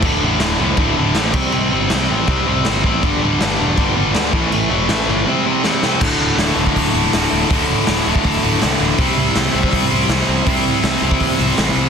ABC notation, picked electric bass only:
X:1
M:4/4
L:1/8
Q:1/4=161
K:Dmix
V:1 name="Picked electric bass" clef=bass
D,,, A,,, D,,, C,, D,,, D,,, A,,, C,, | C,, G,,, C,, A,,, C,, C,, G,,, A,,, | G,,, D,,, G,,, E,,, G,,, G,,, D,, A,,, | A,,, E,,, A,,, G,,, z4 |
D,,, D,,, D,,, D,,, D,,, D,,, D,,, D,,, | D,,,2 D,,, D,,, D,,, D,,, C,, D,,, | C,, C,, C,, C,, C,, C,, C,, C,, | C,,2 C,, C,, C,, C,, A,,, C,, |]